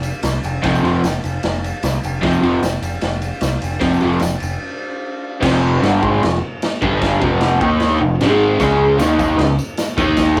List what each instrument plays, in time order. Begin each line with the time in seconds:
Already playing: picked electric bass F1
0.03 ride, tambourine
0.14 tambourine
0.23 picked electric bass C2, snare, ride, tambourine
0.44 picked electric bass F1, ride, tambourine
0.62 picked electric bass F1, overdriven electric guitar F2 C3 F3, kick, snare, ride
0.75 tambourine
0.82 picked electric bass F1, overdriven electric guitar F2 C3 F3, ride, tambourine
1.04 picked electric bass F1, snare, ride, tambourine
1.24 picked electric bass F1, ride, tambourine
1.43 picked electric bass F1, snare, ride
1.54 tambourine
1.64 ride, tambourine
1.74 tambourine
1.83 picked electric bass C2, snare, ride, tambourine
2.03 picked electric bass F1, ride, tambourine
2.21 picked electric bass F1, overdriven electric guitar F2 C3 F3, kick, snare, ride
2.33 tambourine
2.41 picked electric bass F1, overdriven electric guitar F2 C3 F3, ride
2.63 picked electric bass F1, snare, ride, tambourine
2.82 picked electric bass F1, ride, tambourine
3.01 picked electric bass F1, snare, ride
3.13 tambourine
3.22 ride, tambourine
3.33 tambourine
3.41 picked electric bass C2, snare, ride, tambourine
3.62 picked electric bass F1, ride, tambourine
3.80 picked electric bass F1, overdriven electric guitar F2 C3 F3, kick, snare, ride, tambourine
3.93 tambourine
4.00 picked electric bass F1, overdriven electric guitar F2 C3 F3, ride, tambourine
4.12 tambourine
4.19 picked electric bass F1, snare, ride, tambourine
4.40 picked electric bass F1, ride, tambourine
5.41 picked electric bass F1, overdriven electric guitar F2 C3 F3, kick, snare, crash
5.82 picked electric bass G1, overdriven electric guitar G2 D3 G3, snare, crash
6.01 picked electric bass G#1, overdriven electric guitar G#2 D#3 G#3, kick
6.22 picked electric bass F1, overdriven electric guitar F2 C3, snare, crash
6.62 snare, crash
6.82 picked electric bass G1, overdriven electric guitar G2 D3 G3, kick
7.02 kick, snare, crash
7.20 picked electric bass F1, overdriven electric guitar F2 C3 F3, kick
7.41 snare, crash
7.60 picked electric bass D#2, overdriven electric guitar D#3 A#3 D#4, kick
7.80 snare, crash
8.00 picked electric bass F1, overdriven electric guitar F2 C3
8.19 picked electric bass G#1, overdriven electric guitar G#2 D#3 G#3, snare, crash
8.58 picked electric bass C#2, overdriven electric guitar C#3 G#3 C#4, kick, snare, tambourine, crash
8.98 picked electric bass D#2, overdriven electric guitar D#3 A#3 D#4, snare, tambourine, crash
9.19 picked electric bass D#2, overdriven electric guitar D#3 A#3 D#4, kick, tambourine
9.37 picked electric bass C#2, overdriven electric guitar C#3 G#3, snare, crash
9.59 tambourine
9.77 snare, tambourine, crash
9.97 picked electric bass D#2, overdriven electric guitar D#3 A#3 D#4, kick, tambourine
10.17 kick, snare, tambourine, crash
10.37 picked electric bass C#2, overdriven electric guitar C#3